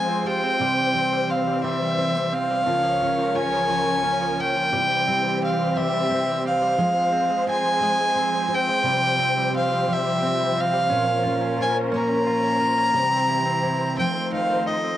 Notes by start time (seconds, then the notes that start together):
Already playing: F3 G#3 C4 F4 C5 G#5
0.09 C4
0.24 F4 G4 G5
0.44 C4
0.58 C3 E3 G3 C4 E4
0.79 G3
0.94 G3 C4
1.13 G3
1.30 C4 F5
1.48 G3
1.62 G3 E5
1.82 G3
1.96 A#3 C4
2.15 G3 C4
2.32 C4 F5
2.51 G3
2.64 C#2 C#3 F3 C#4 F4 A#4 C#5
2.83 F3
3.01 F3 C#4
3.18 F3
3.34 C#4 F4 G#5
3.53 F3
3.67 F3
3.86 F3
4.02 A#3 C#4
4.21 F3
4.37 C#4 F4 G5
4.56 F3
4.71 C3 E3 G3 C4 E4 G4 C5
4.90 G3
5.07 G3 C4
5.24 G3
5.42 C4 F5
5.59 G3
5.76 G3 E5
5.94 G3
6.09 C4
6.27 G3
6.45 C4 F5
6.62 G3
6.78 F3 G#3 C4 F4 G#4
6.96 G#3
7.12 G#3 C4
7.31 G#3
7.46 C4 F4 G#5
7.66 G#3
7.80 G#3
8.01 G#3
8.15 C4
8.35 G#3
8.48 F4
8.52 C4 G5
8.69 G#3
8.83 C3 G3 F4 G4
9.03 G3
9.17 G3 C4
9.38 G3
9.52 C4 F4
9.57 F5
9.71 G3
9.86 F3 G3
9.93 E5
10.05 G3
10.22 C4
10.40 G3
10.55 C4 F4
10.61 F5
10.74 G3
10.90 A#2 C#4 A#4 C5
11.07 C#4
11.23 C#4 F4
11.41 C#4
11.58 F4 C5 G#5
11.75 C#4
11.92 A#3 C#4 A#5
12.09 C#4
12.26 F4
12.44 C#4
12.59 F4 C5
12.78 C#4
12.93 C3 E3 G3 C4 G4 C5
13.11 C4
13.28 E4
13.46 C4
13.63 E4 C5
13.81 C4
13.97 D#3 F3 A3 C4 F4 C5 G5
14.15 C4
14.32 D#4 F5
14.50 C4
14.66 D#4 A4 D#5
14.84 C4